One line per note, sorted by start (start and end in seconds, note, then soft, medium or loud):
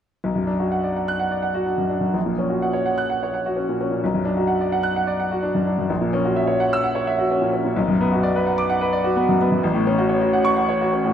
0.24 2.11 B1 medium
0.35 0.55 F#2 soft
0.47 0.67 D4 soft
0.60 0.79 F#4 soft
0.72 0.91 F#5 soft
0.84 1.03 D5 soft
0.96 1.16 F#5 soft
1.08 1.27 F#6 medium
1.20 1.39 F#5 soft
1.31 1.51 D5 soft
1.42 1.62 F#5 medium
1.54 1.74 F#4 soft
1.66 1.86 D4 soft
1.78 1.98 F#2 soft
1.89 2.09 D4 soft
2.01 2.14 F#2 soft
2.14 3.98 A#1 medium
2.26 2.46 A#2 soft
2.38 2.58 C#4 soft
2.49 2.69 F#4 soft
2.62 2.82 F#5 soft
2.73 2.93 C#5 soft
2.86 3.05 F#5 soft
2.98 3.17 F#6 medium
3.10 3.29 F#5 medium
3.23 3.41 C#5 soft
3.34 3.52 F#5 soft
3.46 3.64 F#4 soft
3.56 3.75 C#4 soft
3.69 3.87 A#2 soft
3.81 3.99 C#4 soft
3.91 4.03 A#2 soft
4.04 5.86 B1 medium
4.14 4.33 F#2 soft
4.25 4.44 D4 medium
4.37 4.56 F#4 medium
4.47 4.67 F#5 soft
4.61 4.79 D5 soft
4.72 4.91 F#5 medium
4.83 5.02 F#6 medium
4.96 5.15 F#5 medium
5.07 5.26 D5 medium
5.20 5.38 F#5 medium
5.31 5.50 F#4 medium
5.43 5.62 D4 medium
5.55 5.73 F#2 soft
5.67 5.85 D4 soft
5.79 5.90 F#2 soft
5.90 7.72 A#1 medium
6.01 6.20 A#2 medium
6.13 6.32 C#4 medium
6.25 6.44 F#4 medium
6.36 6.55 E5 medium
6.47 6.67 C#5 medium
6.60 6.79 F#5 medium
6.73 6.91 E6 medium
6.84 7.02 F#5 medium
6.95 7.13 C#5 medium
7.07 7.25 E5 medium
7.19 7.37 F#4 medium
7.31 7.49 C#4 medium
7.42 7.60 A#2 soft
7.54 7.72 C#4 medium
7.65 7.76 A#2 medium
7.76 9.59 B1 medium
7.88 8.06 F#2 medium
8.01 8.19 B3 medium
8.12 8.30 F#4 medium
8.23 8.42 D5 medium
8.36 8.54 B4 medium
8.47 8.65 F#5 medium
8.58 8.76 D6 medium
8.70 8.88 F#5 medium
8.81 9.00 B4 medium
8.93 9.11 D5 medium
9.04 9.23 F#4 medium
9.16 9.35 B3 medium
9.29 9.47 F#2 medium
9.41 9.59 B3 medium
9.52 9.63 F#2 medium
9.63 11.13 A1 medium
9.74 9.93 A2 medium
9.87 10.05 C#4 medium
9.98 10.16 F#4 medium
10.09 10.28 C#5 medium
10.21 10.40 F#4 medium
10.33 10.52 F#5 medium
10.45 10.63 C#6 medium
10.57 10.75 F#5 medium
10.69 10.87 C#5 medium
10.81 11.00 F#4 medium
10.93 11.11 C#4 medium
11.04 11.13 A2 medium